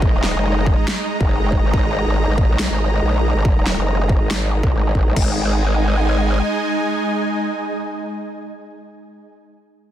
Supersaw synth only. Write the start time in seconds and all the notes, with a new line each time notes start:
Already playing: G#3 D#4 D#5 A#5
5.16 G#3 D#4 D#5 G#5